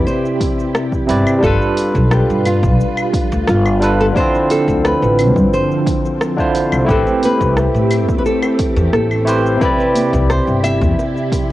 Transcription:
Already playing: tine electric piano C3 C4 E4 G4 D5, string machine C3 E4 G4
0.07 nylon-string guitar C5, shaker
0.26 shaker
0.41 kick, open hi-hat, shaker
0.60 shaker
0.75 cross-stick, shaker
0.92 kick, shaker
1.07 upright bass G1, tine electric piano C3 C4 E4 B4 D5, open hi-hat, shaker
1.27 claves, shaker
1.39 tine electric piano G3 D4 F4
1.43 upright bass G1, string machine G3 F4 B4, nylon-string guitar A4, tine electric piano A4 B4, kick, shaker
1.62 shaker
1.77 open hi-hat, shaker
1.95 upright bass B1, kick, shaker
2.11 nylon-string guitar G4, cross-stick, shaker
2.30 upright bass G2, shaker
2.45 nylon-string guitar F4, open hi-hat, claves, shaker
2.63 upright bass B1, kick, shaker
2.81 shaker
2.97 claves, shaker
3.13 kick, open hi-hat, shaker
3.32 upright bass D2, shaker
3.47 upright bass G1, nylon-string guitar F4, cross-stick, shaker
3.66 claves, shaker
3.80 tine electric piano G3 D4 F4 A4 B4, open hi-hat, shaker
4.00 nylon-string guitar A4, shaker
4.12 tine electric piano D3 D4 E4, string machine D3 F3 C4, kick
4.17 tine electric piano C4 F4, nylon-string guitar C5, shaker
4.35 shaker
4.50 nylon-string guitar A4, open hi-hat, shaker
4.68 upright bass D2, kick, shaker
4.85 nylon-string guitar B4, cross-stick, shaker
5.02 upright bass A1, shaker
5.19 open hi-hat, claves, shaker
5.36 upright bass G2, kick, shaker
5.54 nylon-string guitar C5, shaker
5.71 shaker
5.86 kick, open hi-hat, shaker
6.06 shaker
6.21 cross-stick, shaker
6.37 tine electric piano D3 D4 E4 F4 C5, kick, shaker
6.55 open hi-hat, shaker
6.72 upright bass C2, claves, shaker
6.84 tine electric piano A3 E4 G4, string machine A3 G4
6.89 upright bass A1, tine electric piano C4 B4, nylon-string guitar A4, kick, shaker
7.07 high bongo, low conga, shaker
7.23 nylon-string guitar B4, open hi-hat, high conga, shaker
7.40 upright bass C2, kick, low conga, shaker
7.57 cross-stick, high bongo, shaker
7.74 upright bass A2, shaker
7.91 open hi-hat, high bongo, claves, shaker
8.08 upright bass D2, kick, high conga, shaker
8.18 nylon-string guitar B4
8.26 nylon-string guitar A4, shaker
8.42 high bongo, claves, shaker
8.59 kick, open hi-hat, shaker
8.76 upright bass E2, high bongo, low conga, shaker
8.93 upright bass A1, nylon-string guitar A4, cross-stick, high conga, shaker
9.11 claves, shaker
9.25 tine electric piano A3 E4 G4 B4 C5, open hi-hat, high bongo, shaker
9.46 shaker
9.57 tine electric piano C3 C4, string machine C3 E4
9.61 tine electric piano E4 G4 D5, string machine G4, nylon-string guitar B4, kick, high bongo, shaker
9.79 low conga, shaker
9.95 open hi-hat, high conga, shaker
10.13 upright bass C2, kick, high bongo, low conga, shaker
10.30 nylon-string guitar C5, cross-stick, shaker
10.47 upright bass G1, high bongo, shaker
10.63 nylon-string guitar E5, open hi-hat, claves, shaker
10.81 upright bass E2, kick, high conga, shaker
10.99 high bongo, shaker
11.17 shaker
11.32 kick, open hi-hat, high bongo, shaker

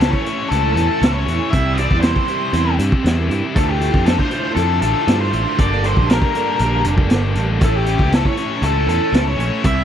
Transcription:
Already playing: picked electric bass C#2, lead electric guitar A4
0.00 distorted electric guitar A2 E3 A3 C#4 E4, snare, closed hi-hat
0.11 lead electric guitar C#5, kick
0.25 distorted electric guitar A2 E3 A3 C#4 E4, closed hi-hat
0.49 picked electric bass C#2, distorted electric guitar A2 E3 A3 C#4 E4, lead electric guitar A4, closed hi-hat
0.73 picked electric bass E2, distorted electric guitar A2 E3 A3 C#4, lead electric guitar A4
0.77 distorted electric guitar E4, closed hi-hat
0.99 picked electric bass C#2, distorted electric guitar A2 E3 A3 C#4 E4, closed hi-hat
1.04 snare
1.12 lead electric guitar C#5
1.25 picked electric bass E2, distorted electric guitar A2 E3 A3 C#4 E4, closed hi-hat
1.50 picked electric bass C2, distorted electric guitar C3 E3 G3 C4 E4, lead electric guitar E5, kick, closed hi-hat
1.74 distorted electric guitar C3 E3 G3 C4, lead electric guitar D5
1.78 distorted electric guitar E4, closed hi-hat
1.91 picked electric bass E2, kick
2.01 distorted electric guitar C3 E3 G3 C4 E4, lead electric guitar C5, snare, closed hi-hat
2.16 kick
2.27 distorted electric guitar C3 E3 G3 C4 E4, closed hi-hat
2.51 picked electric bass E2, distorted electric guitar C3 E3 G3 C4 E4, closed hi-hat
2.77 picked electric bass G2, distorted electric guitar C3 E3 G3 C4 E4, closed hi-hat
2.92 kick
3.02 picked electric bass E2, distorted electric guitar C3 E3 G3 C4 E4, closed hi-hat
3.07 snare
3.28 picked electric bass G2, distorted electric guitar C3 E3 G3 C4 E4, closed hi-hat
3.53 picked electric bass D2, distorted electric guitar D3 A3 D4 F4, clean electric guitar F3, lead electric guitar A4, kick, closed hi-hat
3.57 clean electric guitar E4
3.67 lead electric guitar G4
3.79 distorted electric guitar D3 A3 D4 F4, clean electric guitar F3 E4, closed hi-hat
3.94 picked electric bass F2, kick
4.04 distorted electric guitar D3 A3 D4 F4, clean electric guitar F3, lead electric guitar A4, snare, closed hi-hat
4.09 clean electric guitar E4
4.18 lead electric guitar C5, kick
4.30 distorted electric guitar D3 A3 D4 F4, clean electric guitar F3 E4, closed hi-hat
4.55 picked electric bass F2, distorted electric guitar D3 A3 D4 F4, clean electric guitar F3 E4, lead electric guitar A4, closed hi-hat
4.81 picked electric bass A1, distorted electric guitar D3 A3 D4 F4, clean electric guitar F3 E4, lead electric guitar A4, closed hi-hat
5.08 picked electric bass G2, distorted electric guitar D3 A3 D4 F4, clean electric guitar F3 E4, snare, closed hi-hat
5.21 lead electric guitar C5, snare
5.33 picked electric bass A1, distorted electric guitar D3 A3 D4 F4, clean electric guitar F3 E4, closed hi-hat
5.59 picked electric bass G1, distorted electric guitar G2 D3 G3 A#3 D4 G4, clean electric guitar A4, lead electric guitar D5, kick, closed hi-hat
5.84 distorted electric guitar G2 D3 G3 A#3 D4 G4, clean electric guitar A4, lead electric guitar C5, closed hi-hat
5.97 picked electric bass A#1, kick
6.10 distorted electric guitar G2 D3 G3 A#3 D4 G4, clean electric guitar A4, lead electric guitar A#4, snare, closed hi-hat
6.22 kick
6.35 distorted electric guitar G2 D3 G3 A#3 D4 G4, clean electric guitar A4, closed hi-hat
6.59 picked electric bass A#1, distorted electric guitar G2 D3 G3 A#3 D4, clean electric guitar A4, closed hi-hat
6.63 distorted electric guitar G4
6.84 picked electric bass F1, distorted electric guitar G2 D3 G3 A#3 D4 G4, clean electric guitar A4, closed hi-hat
6.98 kick
7.10 picked electric bass G1, distorted electric guitar G2 D3 G3 A#3 D4 G4, clean electric guitar A4, snare, closed hi-hat
7.35 picked electric bass A1, distorted electric guitar G2 D3 G3 A#3 D4 G4, clean electric guitar A4, closed hi-hat
7.60 picked electric bass A1, distorted electric guitar A2 E3 A3 C#4 E4, kick, closed hi-hat
7.64 lead electric guitar A4
7.76 lead electric guitar G4
7.86 distorted electric guitar A2 E3 A3 C#4 E4, closed hi-hat
7.99 picked electric bass C#2, kick
8.12 distorted electric guitar A2 E3 A3 C#4 E4, lead electric guitar A4, snare, closed hi-hat
8.25 lead electric guitar C#5, kick
8.37 distorted electric guitar A2 E3 A3 C#4 E4, closed hi-hat
8.62 picked electric bass C#2, distorted electric guitar A2 E3 A3 C#4 E4, lead electric guitar A4, closed hi-hat
8.87 picked electric bass E2, distorted electric guitar A2 E3 A3 C#4 E4, lead electric guitar A4, closed hi-hat
9.13 picked electric bass C#2, distorted electric guitar A2 E3 A3 C#4 E4, snare, closed hi-hat
9.28 lead electric guitar C#5
9.38 picked electric bass A#1, distorted electric guitar A2 E3 A3 C#4 E4, closed hi-hat
9.64 picked electric bass C2, distorted electric guitar C3 E3 G3 C4 E4, lead electric guitar E5, kick, closed hi-hat

